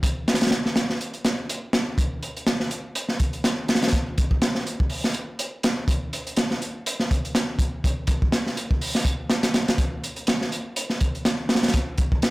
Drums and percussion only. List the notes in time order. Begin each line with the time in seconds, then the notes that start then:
0.03 kick, closed hi-hat
0.28 snare, closed hi-hat
0.34 snare, closed hi-hat
0.41 snare, closed hi-hat
0.46 snare, closed hi-hat
0.51 snare, closed hi-hat
0.66 snare
0.76 snare, closed hi-hat
0.90 snare
1.01 closed hi-hat
1.14 closed hi-hat
1.25 snare, closed hi-hat
1.49 closed hi-hat
1.73 snare, closed hi-hat
1.98 kick, closed hi-hat
2.23 closed hi-hat
2.37 closed hi-hat
2.47 snare, closed hi-hat
2.60 snare
2.71 closed hi-hat
2.95 closed hi-hat
3.09 snare
3.20 kick, closed hi-hat
3.33 closed hi-hat
3.44 snare, closed hi-hat
3.68 snare, closed hi-hat
3.75 snare, closed hi-hat
3.82 snare, closed hi-hat
3.88 snare, closed hi-hat
3.93 kick, closed hi-hat
4.18 kick, closed hi-hat
4.31 kick
4.42 snare, closed hi-hat
4.55 snare
4.67 closed hi-hat
4.80 kick
4.90 open hi-hat
5.04 snare
5.14 closed hi-hat
5.39 closed hi-hat
5.63 snare, closed hi-hat
5.88 kick, closed hi-hat
6.13 closed hi-hat
6.27 closed hi-hat
6.37 snare, closed hi-hat
6.51 snare
6.62 closed hi-hat
6.86 closed hi-hat
7.00 snare
7.11 kick, closed hi-hat
7.25 closed hi-hat
7.35 snare, closed hi-hat
7.59 kick, closed hi-hat
7.84 kick, closed hi-hat
8.07 kick, closed hi-hat
8.22 kick
8.32 snare, closed hi-hat
8.47 snare
8.57 closed hi-hat
8.71 kick
8.81 open hi-hat
8.95 snare
9.05 kick, closed hi-hat
9.30 snare, closed hi-hat
9.43 snare, closed hi-hat
9.54 snare, closed hi-hat
9.68 snare, closed hi-hat
9.78 kick, closed hi-hat
10.04 closed hi-hat
10.16 closed hi-hat
10.27 snare, closed hi-hat
10.41 snare
10.52 closed hi-hat
10.76 closed hi-hat
10.90 snare
11.01 kick, closed hi-hat
11.15 closed hi-hat
11.25 snare, closed hi-hat
11.49 snare, closed hi-hat
11.55 snare, closed hi-hat
11.63 snare, closed hi-hat
11.68 snare, closed hi-hat
11.74 kick, closed hi-hat
11.98 kick, closed hi-hat
12.12 kick
12.22 snare, closed hi-hat